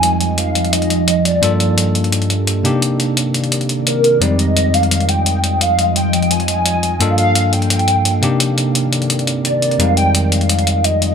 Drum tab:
HH |x-x-x-xxxxx-x-x-|x-x-x-xxxxx-x-x-|x-x-x-xxxxx-x-x-|x-x-x-xxxxx-x-x-|

HH |x-x-x-xxxxx-x-x-|x-x-x-xxxxx-x-x-|x-x-x-xxxxx-x-xx|x-x-x-xxxxx-x-x-|